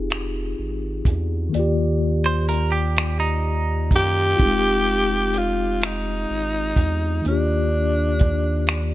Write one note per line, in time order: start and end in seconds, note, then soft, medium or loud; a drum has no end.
0.00 0.55 F1 loud
0.00 1.49 C4 medium
0.00 1.50 D#4 medium
0.00 1.47 F4 medium
0.00 1.51 G4 medium
0.00 1.52 G#4 medium
0.10 finger snap loud
0.10 closed hi-hat medium
0.59 1.02 G#1 medium
1.05 1.49 E2 medium
1.05 kick medium
1.05 closed hi-hat medium
1.49 4.33 D#3 medium
1.49 4.35 A#3 medium
1.54 3.93 D#2 loud
1.54 4.35 F4 medium
1.54 4.36 D5 medium
1.54 closed hi-hat medium
1.59 4.38 G4 medium
2.26 2.48 C5 medium
2.49 2.71 A#4 medium
2.49 closed hi-hat medium
2.72 3.17 G4 medium
2.97 finger snap loud
2.97 closed hi-hat medium
3.20 4.35 D#4 medium
3.91 4.35 F#2 medium
3.91 kick medium
3.91 closed hi-hat medium
3.96 5.39 G4 loud
4.36 6.26 F1 loud
4.36 7.21 C4 medium
4.36 7.19 F4 medium
4.36 kick medium
4.36 closed hi-hat medium
4.41 7.22 D#4 medium
4.41 7.23 G4 medium
4.46 7.24 G#3 medium
5.34 5.87 F4 medium
5.34 closed hi-hat medium
5.82 7.27 D#4 medium
5.82 finger snap loud
5.82 closed hi-hat medium
6.31 6.74 G#1 medium
6.76 7.21 E2 medium
6.76 kick medium
6.76 closed hi-hat medium
7.22 8.94 D#3 medium
7.22 8.94 A#3 medium
7.22 closed hi-hat medium
7.26 8.94 D#2 loud
7.26 8.94 D4 medium
7.26 8.94 F4 medium
7.31 8.94 G4 medium
8.19 kick medium
8.19 closed hi-hat medium
8.67 finger snap loud
8.67 closed hi-hat medium